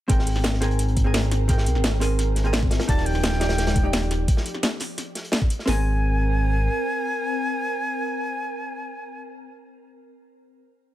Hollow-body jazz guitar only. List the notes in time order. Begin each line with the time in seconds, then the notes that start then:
0.08 C4 G#4 A#4 G5
0.61 C4 G#4 A#4 G#5
1.04 C4 G#4 A#4 G#5
1.48 C4 G#4 A#4 G5
2.00 C4 G#4 A#4 G#5
2.44 C4 G#4 A#4 G#5
2.87 D#4 G4 D5 F5
3.40 D#4 G4 D5 G5
3.83 D#4 G4 D5 G5
5.66 C4 G#4 A#4 G#5